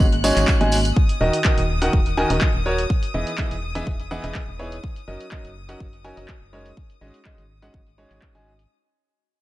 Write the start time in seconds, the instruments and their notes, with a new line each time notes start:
Already playing: violin section F#6
0.00 fm bass G#1, tambourine
0.12 closed hi-hat
0.24 grand piano G#3 C#4 D#4 F#4 G#4 C#5, open hi-hat, tambourine
0.36 fm bass G#1, clap, closed hi-hat, tambourine
0.48 kick, clap, tambourine
0.61 fm bass G#1, grand piano G#3 C#4 D#4 F#4 G#4 G#5, closed hi-hat, high conga
0.72 open hi-hat, tambourine
0.85 closed hi-hat, tambourine
0.96 violin section D#6, kick
1.09 closed hi-hat
1.21 fm bass D#1, grand piano D#3 F#4 A#4 D#5
1.33 closed hi-hat
1.44 grand piano D#3 F#4 A#4 D#5, kick, clap
1.58 fm bass D#1, closed hi-hat
1.82 grand piano D#3 F#4 A#4 F#5, closed hi-hat
1.93 fm bass D#1, kick
2.06 closed hi-hat
2.17 grand piano D#3 F#4 A#4 G#5
2.30 fm bass D#1, grand piano D#3 F#4 A#4 D#5, closed hi-hat
2.41 kick, clap
2.54 fm bass D#1
2.66 grand piano F#4 A#4 C#5
2.78 closed hi-hat
2.90 kick
3.03 closed hi-hat
3.14 fm bass E1, grand piano E3 B3 D#4 E4 G#4 D#5
3.27 closed hi-hat
3.38 grand piano E3 B3 D#4 E4 G#4 D#5, kick, clap
3.51 fm bass E1, closed hi-hat
3.75 grand piano E3 B3 D#4 E4 G#4 E5, closed hi-hat
3.87 fm bass E1, kick
4.00 closed hi-hat
4.11 grand piano E3 B3 D#4 E4 G#4 F#5
4.23 fm bass E1, grand piano E3 B3 D#4 E4 G#4 D#5, clap, closed hi-hat
4.35 kick, clap
4.48 fm bass E1
4.59 grand piano B3 D#4 E4 G#4 C#5
4.72 closed hi-hat
4.84 kick
4.96 closed hi-hat
5.08 fm bass F#1, grand piano F#3 C#4 D#4 F#4 A#4 D#5
5.20 closed hi-hat
5.31 grand piano F#3 C#4 D#4 F#4 A#4 D#5, kick, clap
5.45 fm bass F#1, closed hi-hat
5.69 grand piano F#3 C#4 D#4 F#4 A#4 F#5, closed hi-hat
5.80 fm bass F#1, kick
5.93 closed hi-hat
6.04 grand piano F#3 C#4 D#4 F#4 A#4 G#5
6.17 fm bass F#1, grand piano F#3 C#4 D#4 F#4 A#4 D#5, closed hi-hat
6.28 kick, clap
6.41 fm bass F#1
6.53 grand piano G#3 C#4 D#4 F#4 A#4 C#5
6.66 closed hi-hat
6.77 kick
6.90 closed hi-hat
7.01 fm bass G#1, grand piano G#3 C#4 D#4 F#4 G#4 D#5
7.14 closed hi-hat
7.25 grand piano G#3 C#4 D#4 F#4 G#4 D#5, kick, clap
7.38 fm bass G#1, closed hi-hat
7.62 grand piano G#3 C#4 D#4 F#4 G#4 F#5, closed hi-hat
7.74 fm bass G#1, kick
7.87 closed hi-hat
7.98 grand piano G#3 C#4 D#4 F#4 G#4 C#5
8.10 fm bass G#1, clap, closed hi-hat
8.22 kick, clap
8.35 fm bass G#1, grand piano G#3 C#4 D#4 F#4 G#4 G#5, closed hi-hat
8.59 closed hi-hat